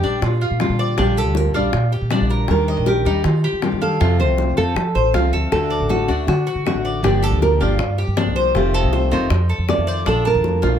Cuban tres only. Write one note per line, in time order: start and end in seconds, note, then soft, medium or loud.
0.04 0.40 D4 medium
0.41 0.78 F4 medium
0.79 0.97 D5 medium
0.98 1.16 D4 medium
1.17 1.54 G4 medium
1.54 1.91 F4 medium
1.92 2.11 G4 medium
2.11 2.30 D4 medium
2.30 2.67 A#4 medium
2.68 2.86 D#5 medium
2.87 3.05 A#4 medium
3.06 3.43 D#4 medium
3.44 3.81 G4 medium
3.81 4.00 F5 medium
4.01 4.19 F4 medium
4.20 4.56 C5 medium
4.57 4.94 A4 medium
4.95 5.13 C5 medium
5.14 5.32 F4 medium
5.33 5.70 A4 medium
5.70 5.89 D5 medium
5.89 6.08 A4 medium
6.08 6.45 D4 medium
6.47 6.83 F#4 medium
6.85 7.03 D5 medium
7.04 7.22 D4 medium
7.23 7.59 G4 medium
7.61 7.97 F4 medium
7.98 8.17 G4 medium
8.17 8.35 D4 medium
8.36 8.73 C5 medium
8.74 8.92 D#5 medium
8.93 9.11 C5 medium
9.11 9.48 D#4 medium
9.49 9.86 A4 medium
9.87 10.06 D5 medium
10.06 10.25 D4 medium
10.25 10.62 A5 medium
10.62 10.79 F4 medium